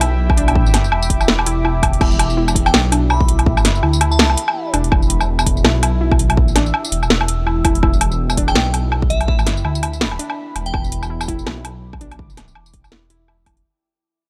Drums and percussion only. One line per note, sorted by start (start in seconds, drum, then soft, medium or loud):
0.01 closed hi-hat medium
0.01 low woodblock medium
0.30 kick loud
0.30 low woodblock medium
0.37 closed hi-hat medium
0.48 closed hi-hat soft
0.48 low woodblock medium
0.56 kick loud
0.66 tambourine soft
0.74 snare medium
0.74 closed hi-hat medium
0.74 low woodblock medium
0.84 tambourine soft
0.92 low woodblock medium
1.02 tambourine medium
1.10 kick medium
1.10 closed hi-hat medium
1.21 tambourine soft
1.21 low woodblock medium
1.28 snare loud
1.39 low woodblock medium
1.46 closed hi-hat medium
1.65 low woodblock medium
1.83 kick medium
1.83 closed hi-hat medium
1.83 low woodblock medium
1.93 closed hi-hat soft
2.01 kick loud
2.01 crash medium
2.01 low woodblock medium
2.12 tambourine soft
2.19 closed hi-hat medium
2.19 low woodblock medium
2.30 tambourine soft
2.48 tambourine medium
2.48 low woodblock medium
2.55 kick medium
2.55 closed hi-hat medium
2.66 tambourine soft
2.66 low woodblock medium
2.74 snare loud
2.92 closed hi-hat medium
2.92 low woodblock medium
3.10 low woodblock medium
3.21 kick loud
3.28 closed hi-hat medium
3.39 closed hi-hat soft
3.39 low woodblock medium
3.46 kick loud
3.57 tambourine soft
3.57 low woodblock medium
3.65 snare medium
3.65 closed hi-hat medium
3.75 tambourine soft
3.83 low woodblock medium
3.93 tambourine medium
4.01 closed hi-hat medium
4.01 low woodblock medium
4.12 tambourine soft
4.19 snare loud
4.30 low woodblock medium
4.37 closed hi-hat medium
4.48 low woodblock medium
4.74 closed hi-hat medium
4.74 low woodblock medium
4.84 closed hi-hat soft
4.92 kick loud
4.92 low woodblock medium
5.02 tambourine soft
5.10 closed hi-hat medium
5.21 tambourine soft
5.21 low woodblock medium
5.39 tambourine medium
5.39 low woodblock medium
5.46 kick medium
5.46 closed hi-hat medium
5.57 tambourine soft
5.65 snare loud
5.65 low woodblock medium
5.83 closed hi-hat medium
5.83 low woodblock medium
6.12 kick loud
6.12 low woodblock medium
6.19 closed hi-hat medium
6.30 closed hi-hat soft
6.30 low woodblock medium
6.37 kick loud
6.48 tambourine soft
6.56 snare medium
6.56 closed hi-hat medium
6.56 low woodblock medium
6.66 tambourine soft
6.74 low woodblock medium
6.84 tambourine medium
6.92 closed hi-hat medium
7.03 tambourine soft
7.03 low woodblock soft
7.10 snare loud
7.21 low woodblock medium
7.28 closed hi-hat medium
7.47 low woodblock medium
7.65 kick medium
7.65 closed hi-hat medium
7.65 low woodblock medium
7.75 closed hi-hat soft
7.83 kick loud
7.83 low woodblock soft
7.93 tambourine soft
8.01 closed hi-hat medium
8.01 low woodblock medium
8.12 tambourine soft
8.30 tambourine medium
8.30 low woodblock medium
8.37 kick medium
8.37 closed hi-hat medium
8.48 tambourine soft
8.48 low woodblock medium
8.55 snare loud
8.74 closed hi-hat medium
8.74 low woodblock medium
8.92 low woodblock medium
9.02 kick loud
9.10 closed hi-hat medium
9.21 closed hi-hat soft
9.21 low woodblock medium
9.28 kick loud
9.39 tambourine soft
9.39 low woodblock medium
9.47 snare medium
9.47 closed hi-hat medium
9.57 tambourine soft
9.65 low woodblock medium
9.75 tambourine medium
9.83 closed hi-hat medium
9.83 low woodblock medium
9.93 tambourine soft
10.01 snare loud
10.12 low woodblock medium
10.19 closed hi-hat medium
10.30 low woodblock medium
10.56 closed hi-hat medium
10.56 low woodblock medium
10.66 closed hi-hat soft
10.74 kick loud
10.74 low woodblock medium
10.84 tambourine soft
10.92 closed hi-hat medium
11.03 tambourine soft
11.03 low woodblock medium
11.21 tambourine medium
11.21 low woodblock medium
11.28 kick medium
11.28 closed hi-hat medium
11.39 tambourine soft
11.47 snare loud
11.47 low woodblock medium
11.65 closed hi-hat medium
11.65 low woodblock medium
11.93 kick loud
11.93 low woodblock medium
12.01 closed hi-hat medium
12.12 closed hi-hat soft
12.12 low woodblock medium
12.19 kick loud
12.30 tambourine soft
12.37 snare medium
12.37 closed hi-hat medium
12.37 low woodblock medium
12.48 tambourine soft
12.55 low woodblock medium
12.66 tambourine medium
12.74 kick medium
12.74 closed hi-hat medium
12.84 tambourine soft
12.84 low woodblock medium
12.92 snare loud
13.10 closed hi-hat medium
13.28 low woodblock medium
13.46 kick medium
13.46 closed hi-hat medium
13.46 low woodblock medium
13.57 closed hi-hat soft